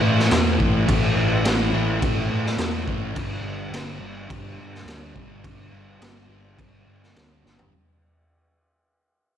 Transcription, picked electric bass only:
0.02 0.28 A2 medium
0.31 0.57 E2 medium
0.60 0.85 A1 medium
0.88 1.13 A1 loud
1.16 1.42 A1 medium
1.45 1.70 A1 loud
1.73 1.99 A1 medium
2.02 2.28 A1 medium
2.29 2.55 A2 medium
2.58 2.84 E2 loud
2.87 3.17 A1 medium
3.16 3.41 G1 loud
3.41 3.68 G1 medium
3.70 3.97 G1 medium
4.00 4.26 G1 medium
4.30 4.56 G1 medium
4.57 4.83 G2 medium
4.84 5.11 D2 medium
5.16 5.41 G1 medium
5.44 5.70 G1 loud
5.71 5.97 G1 medium
6.01 6.26 G1 loud
6.29 6.55 G1 medium
6.58 6.83 G1 medium
6.88 7.13 G2 loud
7.17 7.41 D2 medium
7.44 7.69 G1 medium

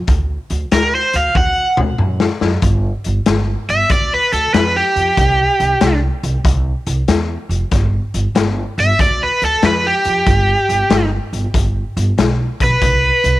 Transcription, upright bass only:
0.08 0.35 D2 medium
0.50 0.64 D2 medium
0.72 0.99 D2 medium
1.14 1.28 D2 medium
1.35 1.62 D2 medium
1.78 1.92 D2 medium
1.99 2.26 F#2 medium
2.42 2.55 F#2 medium
2.62 2.90 G1 medium
3.06 3.19 G1 medium
3.27 3.54 G1 medium
3.69 3.82 G1 medium
3.89 4.17 D2 medium
4.32 4.46 D2 medium
4.54 4.81 F2 medium
4.96 5.09 F2 medium
5.17 5.44 C2 medium
5.60 5.73 C2 medium
5.81 6.08 C2 medium
6.23 6.37 C2 loud
6.44 6.71 C2 medium
6.87 7.00 C2 medium
7.08 7.35 E2 medium
7.49 7.63 F1 medium
7.71 7.99 G1 loud
8.14 8.28 G1 medium
8.35 8.62 G1 medium
8.78 8.91 G1 medium
8.99 9.26 D2 medium
9.42 9.55 D2 medium
9.62 9.90 F2 medium
10.05 10.19 F2 medium
10.27 10.54 G1 medium
10.69 10.83 G1 medium
10.90 11.17 G1 medium
11.33 11.46 G1 medium
11.54 11.81 G1 medium
11.97 12.10 G1 medium
12.18 12.45 B1 medium
12.61 12.74 B1 medium
12.81 13.09 C2 medium
13.24 13.38 C2 medium

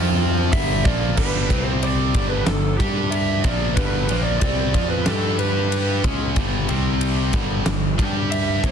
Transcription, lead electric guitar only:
0.53 0.83 E5 loud
0.84 1.17 D5 medium
1.17 1.64 B4 medium
1.65 1.83 C5 medium
1.83 2.29 D5 medium
2.29 2.48 B4 medium
2.45 2.77 A4 medium
2.77 3.13 G4 medium
3.11 3.45 E5 medium
3.41 3.75 D5 medium
3.75 4.22 B4 medium
4.23 4.39 D5 medium
4.40 4.89 D5 medium
4.90 5.07 B4 medium
5.05 5.36 A4 medium
5.39 6.00 B4 medium
8.31 8.65 E5 medium
8.64 8.71 D5 medium

